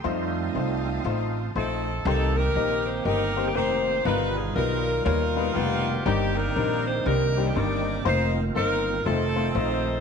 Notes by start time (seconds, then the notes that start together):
Already playing: C6
0.04 F2 G3 A3 C4 D#4 F4 C5 F5 A5 D#6
0.55 C2 A3 D#4 F4 C5
0.85 G3 A3 D#4
1.05 A1 A3 D#4 F4 C5
1.56 A#1 A3 C4 D#4 F4 A4 C5
2.05 C2 C3 D#3 A#3 C4 D#4 G4 A4 C5
2.37 D#4 G4 A#4
2.55 A#1 A#3 C4 D#4 G4 D#5
2.87 C5
3.05 G1 A#3 C4 D#4 G4 A#4 D#5
3.36 A#3 C4 D#4 G4 C5
3.46 G4
3.55 F1 A#3 C4 D#4 G4 A#4 C5
4.05 G1 G2 B2 G3 B3 D#4 F4 A#4 B4
4.37 G#4
4.55 B1 G3 B3 D#4 F4 A#4 B4
5.05 D#2 G3 B3 D#4 F4 A#4 C#5
5.36 G3 B3 D#4 F4 B4
5.55 F1 G3 A#3 B3 D#4 F4 G4 B4
6.05 G1 G2 D#3 G3 A#3 C4 D4 D#4 G4 A#4
6.37 D4 D#4 A#4
6.56 A#1 G3 C4 D4 D#4 A#4
6.87 C5
7.06 C2 G3 C4 D4 D#4 G4 A#4
7.37 G3 C4 D4 D#4 G4
7.48 G4
7.55 G1 G3 C4 D4 D#4 A#4 C5 D5
8.05 F1 D#3 A#3 C4 D#4 F4 C5
8.55 G1 A#3 C4 D#4 F4 A#4 C5
9.06 F1 A3 C4 D#4 F4 A4 C5
9.36 A3 C4 D#4 F4 C5
9.55 A#1 A3 C4 D#4 F4 A4 C5